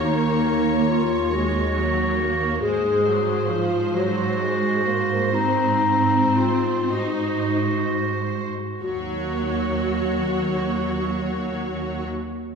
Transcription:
Already playing: D#2 A#3 C#5
0.04 D#4
0.90 F4
1.33 G#3 F#4
1.77 F#3
2.20 A#3
2.62 G#2 G#3 G#4 C5
3.07 F#3
3.51 F3
3.94 F#3 F#4
4.40 G#3
4.87 A#3
5.34 C4 D#4
6.37 F4
6.93 D#4 F#4
8.83 D#2 F#3 F#4 C#5

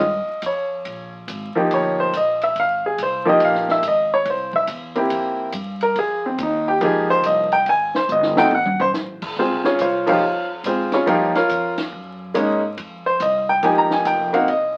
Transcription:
Already playing: D#5
0.00 G2
0.28 muted upright bass stroke
0.42 F2, kick, hi-hat pedal, ride
0.46 C#5
0.85 A#1, kick, ride
1.28 G#1, kick, hi-hat pedal, ride
1.55 F3 A#3 D#4 G4, muted upright bass stroke
1.70 G1 C#5, kick, ride
2.00 C5
2.13 A#1, kick, hi-hat pedal, ride
2.17 D#5
2.41 E5, ride
2.55 G#1, kick, ride
2.60 F5
2.86 G#4
2.98 C2, kick, hi-hat pedal, ride
3.03 C5
3.25 F3 A#3 D#4 G4 D#5
3.40 A#1, kick, ride
3.45 F5
3.55 snare
3.69 E5, snare
3.82 G#1, kick, hi-hat pedal, ride
3.88 D#5
4.14 C#5
4.25 C2, kick, ride
4.30 C5
4.53 E5, kick
4.67 E2, kick, hi-hat pedal, ride
4.95 A#3 C4 E4 G4, ride
5.10 F2, kick, ride
5.52 G2, kick, hi-hat pedal, ride
5.81 A#4, ride
5.96 F2 G#4, kick, ride
6.26 C4
6.38 D#2, kick, hi-hat pedal, ride
6.43 D#4
6.68 G4
6.81 C#2 F3 A#3 D#4 G4, kick, ride
6.85 G#4
7.10 C5
7.23 C2 D#5, kick, hi-hat pedal, ride
7.52 G5, ride
7.66 G#1 G#5, kick, ride
7.95 C5, snare
8.08 G1 D#5, hi-hat pedal
8.23 snare
8.37 A3 C4 D#4 F#4 G5, snare
8.51 G#1 F#5, high tom
8.65 mid tom
8.80 C5, floor tom
8.94 A1, snare, hi-hat pedal
9.22 kick, crash
9.36 C#2 C4 F4 G#4 C5, kick
9.52 C2
9.64 G#1 C#4 F4 G#4 C#5, snare
9.79 C2 F4 C5 C#5 F5, kick, hi-hat pedal, ride
10.06 F3 A#3 D#4 F4 G4 C5 C#5 F5, kick, crash
10.22 F2
10.64 G#2 C4 F4 G#4 C5, kick, hi-hat pedal, ride
10.92 C#4 F4 G#4 C#5, snare, ride
11.06 G2 F3 A#3 D#4 F4 G4 A#4 C#5 F5, kick, ride
11.35 F4 A#4 C#5 F5, muted upright bass stroke, snare, ride
11.49 F2, kick, hi-hat pedal, ride
11.78 snare, ride
11.92 F#2, kick
12.34 G#2 G#3 A#3 C#4 D#4, kick, hi-hat pedal, ride
12.77 F2, kick, ride
13.06 C5
13.20 C2 D#5, kick, hi-hat pedal, ride
13.49 G5
13.63 G#1 F3 A#3 D#4 G4 G#5, kick, ride
13.78 A#5
13.91 G#5, snare
14.05 F1 G5, kick, hi-hat pedal, ride
14.33 A#3 C4 D#4 F#4 F5, ride
14.48 C2 D#5, kick, ride

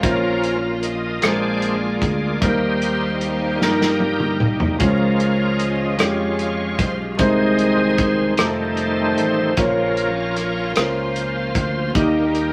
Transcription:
Already playing: F3 C#4 F4
0.01 A#1 A#2 F3 A#3 C#4 F4 A#4 C5, kick, closed hi-hat
0.11 C#5
0.43 closed hi-hat
0.83 D#5, closed hi-hat
1.22 A#1 A#2 G#3 C4 D4 F4 G#4 A#4 D5, cross-stick, closed hi-hat
1.29 D4
1.62 closed hi-hat
2.02 D2, kick, closed hi-hat
2.41 D#2 D#3 G3 A#3 D#4 G4 A#4 C5, kick, closed hi-hat
2.82 closed hi-hat
3.21 closed hi-hat
3.60 G2 F3 A#3 D#4 G4 A#4, snare
3.66 G3
3.81 snare
4.00 high tom
4.20 mid tom
4.40 C2, mid tom
4.60 floor tom
4.78 C#2 C#3 F3 G#3 C#4 F4 A#4 C#5, kick, closed hi-hat
5.20 closed hi-hat
5.59 D#5, closed hi-hat
5.98 F2 G#3 C#4 F4 G4 C#5, cross-stick, closed hi-hat
6.39 closed hi-hat
6.79 B1 C5, kick, closed hi-hat
7.17 C2 C3 D#3 G#3 C4 D#4 G#4 C5 D#5, kick, closed hi-hat
7.59 closed hi-hat
7.98 kick, closed hi-hat
8.37 F1 D#3 F3 G3 A3 C4 D#4 F4 A4 C5, cross-stick, closed hi-hat
8.77 D#4 A4 C5, closed hi-hat
9.18 A1, closed hi-hat
9.57 A#1 A#2 C#3 F3 A#3 C#4 F4 A#4 C#5, kick, closed hi-hat
9.97 closed hi-hat
10.36 cross-stick, closed hi-hat
10.76 C#2 A#3 C#4 F4 A#4 C5, cross-stick, closed hi-hat
11.16 closed hi-hat
11.55 D2, kick, closed hi-hat
11.94 D#2 D#3 G3 A#3 D#4 G4 A#4 D#5, kick, closed hi-hat
12.35 closed hi-hat

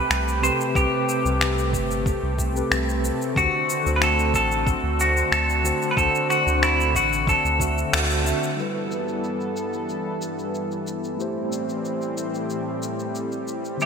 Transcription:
Already playing: C3 A3 C4 G4 B4
0.10 C2, finger snap, shaker
0.28 shaker
0.42 C3 C4 G4 B4 C5, shaker
0.61 shaker
0.75 C2 C3 C4 G4 B4, kick, shaker
1.09 shaker
1.23 C2 C3 C4 G4, shaker
1.27 B4
1.41 finger snap, shaker
1.58 shaker
1.73 G1, kick, shaker
1.91 shaker
2.06 kick, shaker
2.23 C2
2.39 kick, shaker
2.53 C3 C4 G4, shaker
2.58 B4
2.71 C2, finger snap, shaker
2.89 shaker
3.05 shaker
3.22 shaker
3.35 D2 D3 D4 F#4 C5, kick, shaker
3.70 shaker
3.83 D2 D3 D4 F#4, shaker
3.88 C5
3.96 B4
4.02 A4, finger snap, shaker
4.19 shaker
4.34 A1 A4, kick, shaker
4.51 shaker
4.67 kick, shaker
4.83 D2
5.00 F#4, shaker
5.17 shaker
5.32 D2 A4, finger snap, shaker
5.50 shaker
5.64 D3 D4 F#4 C5, shaker
5.82 shaker
5.91 B4
5.96 D2 D3 D4 F#4 A4 C5, kick, shaker
6.15 shaker
6.30 F#4, finger snap, shaker
6.44 D2 D3 D4 F#4, shaker
6.49 C5
6.63 E4, finger snap, shaker
6.80 shaker
6.95 A1 F#4, kick, shaker
7.13 shaker
7.27 A4, kick, shaker
7.44 D2, shaker
7.59 D3 D4 F#4 E5, kick, shaker
7.78 shaker
7.93 D2, finger snap, shaker
8.11 shaker
8.24 D3 D4 F#4 E5, shaker
8.43 shaker
8.56 G2 E3 G3 B3 E4 A4, shaker
8.60 B4
8.91 shaker
9.08 shaker
9.24 shaker
9.41 shaker
9.57 shaker
9.73 shaker
9.89 shaker
10.22 shaker
10.39 shaker
10.54 shaker
10.71 shaker
10.87 shaker
11.04 shaker
11.17 A2 G3 A3 C4 E4 G4, shaker
11.21 C5
11.52 shaker
11.69 shaker
11.85 shaker
12.02 shaker
12.18 shaker
12.34 shaker
12.50 shaker
12.83 shaker
12.99 shaker
13.15 shaker
13.32 shaker
13.48 shaker
13.65 shaker
13.77 D2 C3 D3 G3 C4 E4, shaker
13.82 G4 E5

